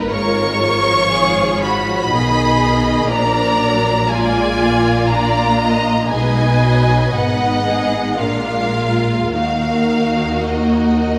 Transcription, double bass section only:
0, 0, Header, 1, 2, 480
1, 0, Start_track
1, 0, Tempo, 993377
1, 57, Time_signature, 3, 2, 24, 8
1, 1496, Tempo, 1013514
1, 3416, Tempo, 1050788
1, 3896, Tempo, 1151631
1, 5140, End_track
2, 0, Start_track
2, 0, Title_t, "Double bass section"
2, 0, Program_c, 0, 48
2, 0, Note_on_c, 0, 31, 45
2, 54, Note_on_c, 0, 32, 57
2, 57, Note_off_c, 0, 31, 0
2, 1000, Note_off_c, 0, 32, 0
2, 1017, Note_on_c, 0, 35, 48
2, 1484, Note_off_c, 0, 35, 0
2, 1490, Note_on_c, 0, 34, 53
2, 2908, Note_off_c, 0, 34, 0
2, 2929, Note_on_c, 0, 35, 48
2, 3407, Note_off_c, 0, 35, 0
2, 3418, Note_on_c, 0, 32, 45
2, 3888, Note_off_c, 0, 32, 0
2, 3894, Note_on_c, 0, 34, 43
2, 4364, Note_on_c, 0, 39, 43
2, 4366, Note_off_c, 0, 34, 0
2, 5140, Note_off_c, 0, 39, 0
2, 5140, End_track
0, 0, End_of_file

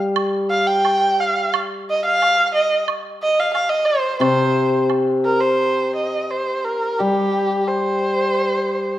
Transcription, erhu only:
0, 0, Header, 1, 2, 480
1, 0, Start_track
1, 0, Tempo, 687285
1, 105, Time_signature, 2, 2, 24, 8
1, 1544, Tempo, 664452
1, 2984, Tempo, 700935
1, 4904, Tempo, 683371
1, 6295, End_track
2, 0, Start_track
2, 0, Title_t, "Erhu"
2, 0, Program_c, 0, 110
2, 351, Note_on_c, 0, 77, 87
2, 466, Note_on_c, 0, 79, 92
2, 477, Note_off_c, 0, 77, 0
2, 836, Note_on_c, 0, 77, 78
2, 846, Note_off_c, 0, 79, 0
2, 1072, Note_off_c, 0, 77, 0
2, 1326, Note_on_c, 0, 75, 82
2, 1428, Note_off_c, 0, 75, 0
2, 1434, Note_on_c, 0, 77, 102
2, 1766, Note_off_c, 0, 77, 0
2, 1784, Note_on_c, 0, 75, 84
2, 2009, Note_off_c, 0, 75, 0
2, 2278, Note_on_c, 0, 75, 90
2, 2402, Note_on_c, 0, 77, 90
2, 2412, Note_off_c, 0, 75, 0
2, 2499, Note_off_c, 0, 77, 0
2, 2503, Note_on_c, 0, 77, 83
2, 2614, Note_on_c, 0, 75, 82
2, 2625, Note_off_c, 0, 77, 0
2, 2731, Note_on_c, 0, 72, 78
2, 2742, Note_off_c, 0, 75, 0
2, 2970, Note_off_c, 0, 72, 0
2, 2975, Note_on_c, 0, 72, 81
2, 3422, Note_off_c, 0, 72, 0
2, 3698, Note_on_c, 0, 70, 73
2, 3809, Note_on_c, 0, 72, 74
2, 3819, Note_off_c, 0, 70, 0
2, 4179, Note_off_c, 0, 72, 0
2, 4184, Note_on_c, 0, 75, 59
2, 4424, Note_on_c, 0, 72, 62
2, 4434, Note_off_c, 0, 75, 0
2, 4654, Note_on_c, 0, 70, 67
2, 4664, Note_off_c, 0, 72, 0
2, 4888, Note_on_c, 0, 67, 75
2, 4898, Note_off_c, 0, 70, 0
2, 5376, Note_on_c, 0, 72, 68
2, 5387, Note_off_c, 0, 67, 0
2, 6295, Note_off_c, 0, 72, 0
2, 6295, End_track
0, 0, End_of_file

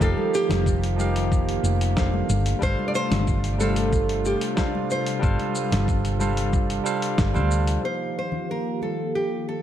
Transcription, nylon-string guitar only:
0, 0, Header, 1, 2, 480
1, 0, Start_track
1, 0, Tempo, 652174
1, 9, Time_signature, 4, 2, 24, 8
1, 7083, End_track
2, 0, Start_track
2, 0, Title_t, "Nylon-string guitar"
2, 0, Program_c, 0, 24
2, 15, Note_on_c, 0, 69, 116
2, 254, Note_off_c, 0, 69, 0
2, 257, Note_on_c, 0, 67, 105
2, 1663, Note_off_c, 0, 67, 0
2, 1937, Note_on_c, 0, 72, 124
2, 2115, Note_off_c, 0, 72, 0
2, 2118, Note_on_c, 0, 74, 89
2, 2168, Note_off_c, 0, 74, 0
2, 2172, Note_on_c, 0, 72, 113
2, 2650, Note_off_c, 0, 72, 0
2, 2653, Note_on_c, 0, 69, 96
2, 3137, Note_on_c, 0, 67, 94
2, 3145, Note_off_c, 0, 69, 0
2, 3617, Note_on_c, 0, 72, 96
2, 3627, Note_off_c, 0, 67, 0
2, 5263, Note_off_c, 0, 72, 0
2, 5777, Note_on_c, 0, 72, 95
2, 6016, Note_off_c, 0, 72, 0
2, 6025, Note_on_c, 0, 72, 86
2, 6260, Note_off_c, 0, 72, 0
2, 6263, Note_on_c, 0, 70, 81
2, 6492, Note_off_c, 0, 70, 0
2, 6495, Note_on_c, 0, 69, 79
2, 6734, Note_off_c, 0, 69, 0
2, 6737, Note_on_c, 0, 67, 75
2, 6979, Note_off_c, 0, 67, 0
2, 6982, Note_on_c, 0, 69, 79
2, 7083, Note_off_c, 0, 69, 0
2, 7083, End_track
0, 0, End_of_file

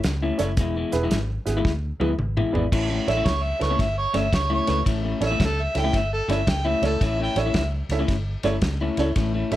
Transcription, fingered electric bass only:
0, 0, Header, 1, 2, 480
1, 0, Start_track
1, 0, Key_signature, 3, "major"
1, 0, Tempo, 537153
1, 510, Time_signature, 4, 2, 24, 8
1, 8545, End_track
2, 0, Start_track
2, 0, Title_t, "Fingered electric bass"
2, 0, Program_c, 0, 33
2, 39, Note_on_c, 0, 37, 85
2, 268, Note_off_c, 0, 37, 0
2, 353, Note_on_c, 0, 30, 86
2, 513, Note_off_c, 0, 30, 0
2, 513, Note_on_c, 0, 28, 88
2, 744, Note_off_c, 0, 28, 0
2, 833, Note_on_c, 0, 28, 81
2, 953, Note_off_c, 0, 28, 0
2, 992, Note_on_c, 0, 32, 77
2, 1224, Note_off_c, 0, 32, 0
2, 1309, Note_on_c, 0, 32, 83
2, 1430, Note_off_c, 0, 32, 0
2, 1475, Note_on_c, 0, 38, 77
2, 1706, Note_off_c, 0, 38, 0
2, 1787, Note_on_c, 0, 38, 73
2, 1909, Note_off_c, 0, 38, 0
2, 1947, Note_on_c, 0, 32, 77
2, 2181, Note_off_c, 0, 32, 0
2, 2266, Note_on_c, 0, 32, 77
2, 2388, Note_off_c, 0, 32, 0
2, 2435, Note_on_c, 0, 33, 80
2, 2665, Note_off_c, 0, 33, 0
2, 2748, Note_on_c, 0, 33, 80
2, 2869, Note_off_c, 0, 33, 0
2, 2910, Note_on_c, 0, 37, 86
2, 3142, Note_off_c, 0, 37, 0
2, 3226, Note_on_c, 0, 37, 80
2, 3348, Note_off_c, 0, 37, 0
2, 3388, Note_on_c, 0, 31, 86
2, 3620, Note_off_c, 0, 31, 0
2, 3700, Note_on_c, 0, 31, 77
2, 3824, Note_off_c, 0, 31, 0
2, 3866, Note_on_c, 0, 37, 82
2, 4099, Note_off_c, 0, 37, 0
2, 4184, Note_on_c, 0, 37, 84
2, 4306, Note_off_c, 0, 37, 0
2, 4346, Note_on_c, 0, 33, 84
2, 4579, Note_off_c, 0, 33, 0
2, 4652, Note_on_c, 0, 33, 76
2, 4778, Note_off_c, 0, 33, 0
2, 4826, Note_on_c, 0, 37, 91
2, 5059, Note_off_c, 0, 37, 0
2, 5140, Note_on_c, 0, 37, 84
2, 5263, Note_off_c, 0, 37, 0
2, 5304, Note_on_c, 0, 31, 83
2, 5537, Note_off_c, 0, 31, 0
2, 5614, Note_on_c, 0, 31, 72
2, 5739, Note_off_c, 0, 31, 0
2, 5783, Note_on_c, 0, 37, 84
2, 6017, Note_off_c, 0, 37, 0
2, 6093, Note_on_c, 0, 37, 79
2, 6219, Note_off_c, 0, 37, 0
2, 6266, Note_on_c, 0, 33, 88
2, 6499, Note_off_c, 0, 33, 0
2, 6574, Note_on_c, 0, 33, 86
2, 6699, Note_off_c, 0, 33, 0
2, 6742, Note_on_c, 0, 37, 83
2, 6976, Note_off_c, 0, 37, 0
2, 7052, Note_on_c, 0, 37, 88
2, 7178, Note_off_c, 0, 37, 0
2, 7227, Note_on_c, 0, 31, 80
2, 7459, Note_off_c, 0, 31, 0
2, 7538, Note_on_c, 0, 31, 73
2, 7662, Note_off_c, 0, 31, 0
2, 7703, Note_on_c, 0, 37, 84
2, 7937, Note_off_c, 0, 37, 0
2, 8019, Note_on_c, 0, 37, 77
2, 8143, Note_off_c, 0, 37, 0
2, 8188, Note_on_c, 0, 33, 89
2, 8421, Note_off_c, 0, 33, 0
2, 8502, Note_on_c, 0, 33, 75
2, 8545, Note_off_c, 0, 33, 0
2, 8545, End_track
0, 0, End_of_file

